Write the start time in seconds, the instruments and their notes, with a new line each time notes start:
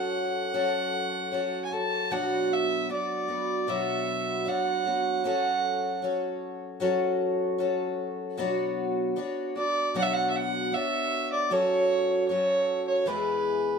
Already playing: twelve-string acoustic guitar F#3 C#4 F#4 A4 C#5, fiddle F#5
0.54 twelve-string acoustic guitar F#3 C#4 F#4 A4 C#5
1.32 twelve-string acoustic guitar C#4 F#4 A4 C#5
1.65 fiddle G#5
1.72 twelve-string acoustic guitar F#4 A4 C#5, fiddle A5
2.10 twelve-string acoustic guitar B2 F#3 B3 D4 F#4 C#5, fiddle F#5
2.53 fiddle E5
2.89 twelve-string acoustic guitar B3 D4 F#4, fiddle D5
3.28 twelve-string acoustic guitar B3 D4 F#4
3.67 twelve-string acoustic guitar B2 F#3 B3 D4 F#4 C#5, fiddle E5
4.45 twelve-string acoustic guitar B3 D4 F#4 C#5, fiddle F#5
4.85 twelve-string acoustic guitar B3 D4 F#4 C#5
5.24 twelve-string acoustic guitar F#3 C#4 F#4 A4 C#5, fiddle F#5
6.02 twelve-string acoustic guitar C#4 F#4 A4 C#5
6.80 twelve-string acoustic guitar F#3 C#4 F#4 A4 C#5
7.58 twelve-string acoustic guitar C#4 F#4 A4 C#5
8.37 twelve-string acoustic guitar B2 F#3 B3 D4 F#4 C#5
9.16 twelve-string acoustic guitar B3 D4 F#4 C#5
9.56 twelve-string acoustic guitar B3 D4 F#4, fiddle D5
9.94 twelve-string acoustic guitar B2 F#3 B3 D4 F#4 C#5, fiddle F#5
10.03 fiddle E5
10.14 fiddle F#5
10.30 fiddle E5
10.36 fiddle F#5
10.72 twelve-string acoustic guitar B3 D4 F#4 C#5, fiddle E5
11.32 fiddle D5
11.50 twelve-string acoustic guitar F#3 C#4 F#4 A4, fiddle C#5
12.28 twelve-string acoustic guitar F#3 C#4 F#4 A4, fiddle C#5
12.88 fiddle C#5
13.06 twelve-string acoustic guitar E2 E3 G#3 B3 E4 G#4, fiddle B4